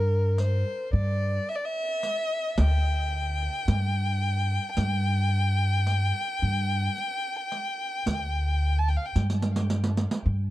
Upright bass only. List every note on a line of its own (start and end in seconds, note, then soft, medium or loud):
0.00 0.62 G2 loud
0.93 1.38 G2 medium
2.58 3.47 D2 medium
3.68 4.57 G2 medium
4.77 6.11 G2 loud
6.42 6.87 G2 medium
8.06 8.95 D2 medium
9.16 10.05 G2 medium
10.26 10.50 G2 medium